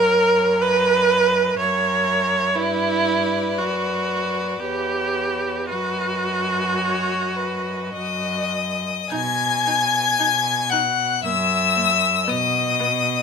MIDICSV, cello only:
0, 0, Header, 1, 2, 480
1, 0, Start_track
1, 0, Key_signature, 5, "major"
1, 0, Tempo, 972447
1, 1266, Tempo, 1027397
1, 1267, Time_signature, 3, 2, 24, 8
1, 2226, Tempo, 1090909
1, 3186, Tempo, 1156069
1, 4146, Tempo, 1054482
1, 6018, End_track
2, 0, Start_track
2, 0, Title_t, "Cello"
2, 0, Program_c, 0, 42
2, 0, Note_on_c, 0, 42, 68
2, 765, Note_off_c, 0, 42, 0
2, 785, Note_on_c, 0, 42, 65
2, 1267, Note_on_c, 0, 43, 58
2, 1274, Note_off_c, 0, 42, 0
2, 1744, Note_on_c, 0, 42, 49
2, 1752, Note_off_c, 0, 43, 0
2, 2225, Note_off_c, 0, 42, 0
2, 2228, Note_on_c, 0, 40, 55
2, 2706, Note_on_c, 0, 42, 58
2, 2713, Note_off_c, 0, 40, 0
2, 3664, Note_off_c, 0, 42, 0
2, 3667, Note_on_c, 0, 42, 55
2, 4049, Note_off_c, 0, 42, 0
2, 4145, Note_on_c, 0, 47, 71
2, 4579, Note_off_c, 0, 47, 0
2, 4637, Note_on_c, 0, 47, 61
2, 5058, Note_off_c, 0, 47, 0
2, 5113, Note_on_c, 0, 42, 75
2, 5535, Note_off_c, 0, 42, 0
2, 5589, Note_on_c, 0, 47, 82
2, 6009, Note_off_c, 0, 47, 0
2, 6018, End_track
0, 0, End_of_file